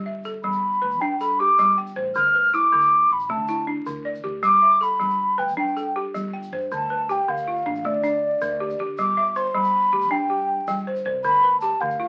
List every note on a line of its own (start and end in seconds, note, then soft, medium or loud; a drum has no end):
0.00 0.35 G1 medium
0.00 0.25 G3 medium
0.06 0.63 E5 medium
0.24 0.82 A4 medium
0.24 shaker medium
0.44 0.76 G1 medium
0.44 0.82 G3 medium
0.44 1.02 B5 medium
0.52 shaker soft
0.72 shaker soft
0.82 1.01 D2 medium
0.82 1.39 B4 medium
0.91 shaker soft
1.01 1.49 G2 loud
1.01 1.39 D4 medium
1.01 1.19 G5 medium
1.01 shaker soft
1.20 1.78 A4 medium
1.20 1.41 B5 medium
1.20 shaker medium
1.39 1.97 G4 medium
1.39 1.77 D6 loud
1.58 1.90 G1 loud
1.58 1.97 G3 medium
1.58 shaker medium
1.78 2.35 G5 medium
1.87 shaker soft
1.96 2.12 A1 loud
1.96 2.34 C5 medium
2.15 2.64 D2 medium
2.15 2.53 D3 medium
2.15 2.56 F6 loud
2.15 shaker medium
2.35 2.92 B4 medium
2.53 3.11 E4 medium
2.53 3.14 D6 medium
2.53 shaker medium
2.72 3.04 D2 medium
2.72 3.11 D3 medium
2.81 shaker soft
3.10 3.31 A1 medium
3.10 3.33 B5 medium
3.20 shaker soft
3.29 3.77 D3 loud
3.29 3.68 A3 medium
3.29 3.68 A5 medium
3.48 4.06 E4 medium
3.48 shaker medium
3.67 4.24 D4 medium
3.86 4.19 D2 medium
3.86 4.24 D3 medium
3.86 shaker medium
4.05 4.62 D5 medium
4.15 shaker soft
4.24 4.40 D2 loud
4.24 4.62 G4 medium
4.43 4.92 G1 medium
4.43 4.81 G3 medium
4.43 4.84 D6 loud
4.43 shaker medium
4.53 shaker soft
4.62 5.19 E5 medium
4.62 shaker soft
4.81 5.38 A4 medium
4.81 5.40 B5 medium
4.81 shaker medium
5.00 5.33 G1 loud
5.00 5.38 G3 medium
5.00 shaker soft
5.10 shaker soft
5.38 5.58 D2 medium
5.38 5.95 B4 medium
5.38 5.58 G5 medium
5.38 shaker soft
5.48 shaker medium
5.57 6.06 G2 loud
5.57 5.95 D4 medium
5.57 5.93 G5 medium
5.67 shaker soft
5.77 6.33 A4 medium
5.77 shaker medium
5.96 6.52 G4 medium
6.14 6.47 G1 loud
6.14 6.52 G3 medium
6.14 shaker medium
6.33 6.90 G5 medium
6.43 shaker soft
6.53 6.68 G2 loud
6.53 6.90 C5 medium
6.62 shaker soft
6.71 7.19 D2 medium
6.71 7.09 D3 medium
6.71 7.13 A5 medium
6.71 shaker medium
6.90 7.47 B4 medium
7.09 7.66 G4 medium
7.09 7.31 G5 medium
7.09 shaker medium
7.28 7.60 D2 medium
7.28 7.66 D3 medium
7.28 7.87 F5 medium
7.37 shaker soft
7.48 8.04 F4 medium
7.56 shaker soft
7.66 7.86 A1 loud
7.66 8.02 D4 medium
7.75 shaker soft
7.85 8.33 D3 loud
7.85 8.23 A3 medium
7.85 8.80 D5 medium
7.85 shaker soft
8.04 8.60 D4 medium
8.04 shaker medium
8.41 8.73 D2 loud
8.41 8.79 D3 medium
8.41 shaker medium
8.60 8.79 G4 medium
8.70 shaker medium
8.79 8.95 D3 loud
8.79 9.17 G4 medium
8.98 9.46 G1 medium
8.98 9.36 G3 medium
8.98 9.38 D6 loud
8.98 shaker medium
9.17 9.74 E5 medium
9.36 9.93 C5 medium
9.36 9.57 C6 medium
9.36 shaker medium
9.54 9.87 G1 loud
9.54 9.92 G3 medium
9.54 10.13 B5 loud
9.64 shaker medium
9.83 shaker soft
9.92 10.11 D2 loud
9.92 10.29 G4 medium
10.01 shaker medium
10.11 10.59 G2 loud
10.11 10.49 D4 medium
10.11 10.79 G5 medium
10.11 shaker soft
10.30 10.87 G4 medium
10.68 11.00 G1 loud
10.68 11.06 G3 medium
10.68 shaker medium
10.87 11.05 C5 medium
10.96 shaker soft
11.05 11.21 C2 medium
11.05 11.44 C5 medium
11.24 11.72 D2 medium
11.24 11.62 D3 medium
11.24 11.60 B5 loud
11.24 shaker medium
11.43 12.00 B4 medium
11.61 12.08 G4 medium
11.61 11.82 A5 medium
11.61 shaker medium
11.80 12.08 D2 loud
11.80 12.08 D3 medium
11.80 12.08 F5 medium
11.90 shaker soft
12.00 12.08 F4 medium